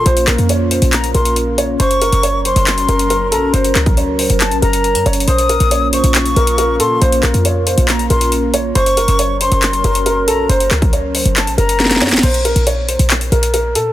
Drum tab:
CC |------------------------------------------------------------------------------------------------|------------------------------------------------------------------------------------------------|------------------------------------------------------------------------------------------------|------------------------------------------------------------------------------------------------|
HH |x-----x-----x-----x-----x-----------x-----x-----x-----x-----x-----x-----x-----------x-----------|x-----x-----x-----x-----x-----------x-----x-----x-----x-----x-----x-----x-----------x-----------|x-----x-----x-----x-----x-----------o-----x-----x-----x-----x-----x-----x-----x-----x---x---x---|x-----x-----x-----x-----x-----------x-----x-----x-----x-----x-----x-----x-----------x-----------|
CP |------------x-----------------------------------x-----------------------------------------------|------------------------------------------------x-----------------------------------------------|------------x-----------------------------------x-----------------------------------------------|------------------------------------------------x-----------------------------------------------|
SD |------------------------------------------------------------------------------------------------|------------------------------------------------------------------------------------------------|------------------------------------------------------------------------------------------------|------------------------------------------------------------------------------------------------|
BD |------------------------------------------------------------------------------------------------|------------------------------------------------------------------------------------------------|------------------o-----------------------------------------------------------------------------|------------------------------------------------------------------------------------------------|

CC |------------------------------------------------------------------------------------------------|------------------------------------------------------------------------------------------------|------------------------------------------------------------------------------------------------|x-----------------------------------------------------------------------------------------------|
HH |x-----x-----x-----x-----x-----------x-----x-----x-----x-----x-----x-----x-----------x-----------|x-----x-----x-----x-----x-----------x-----x-----x-----x-----x-----x-----x-----------x-----------|x-----x-----x-----x-----x-----------o-----x-----x-----x-----x-----x-----x-----x-----x---x---x---|x-----x-----x-----x-----x-----------x-----x-----x-----x-----x-----x-----x-----------x-----------|
CP |------------x-----------------------------------x-----------------------------------------------|------------------------------------------------x-----------------------------------------------|------------x-----------------------------------x-----------------------------------------------|------------------------------------------------x-----------------------------------------------|
SD |------------------------------------------------------------------------------------------------|------------------------------------------------------------------------------------------------|------------------------------------------------------------------------o--o--o--o--o--o--o--o--|------------------------------------------------------------------------------------------------|
BD |------------------------------------------------------------------------------------------------|------------------------------------------------------------------------------------------------|------------------o-----------------------------------------------------------------------------|------------------------------------------------------------------------------------------------|